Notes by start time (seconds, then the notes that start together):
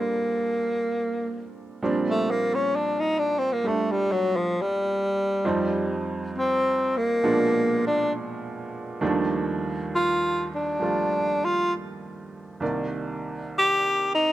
Already playing: A#2 F3 G3 C4 D4 A4
0.00 A#3
1.82 A#2 F3 G3 C4 D4
2.09 A3
2.30 A#3
2.54 C#4
2.75 D4
2.99 D#4
3.19 D4
3.38 C4
3.52 A#3
3.64 G3 A3 D4
3.91 G3
4.11 F#3
4.36 F3
4.61 G3
5.45 F2 F3 G3 C4 D#4
6.38 C4
6.97 A#3
7.24 A#2 B2 F3 G#3 D4
7.86 D4
9.01 D#2 D#3 F3 G3 A3 D4
9.95 F4
10.55 D4
10.80 F3 G3 A3 F4
11.44 F4
12.60 C2 C3 D#3 A#3 D5
13.58 G4
14.14 D#4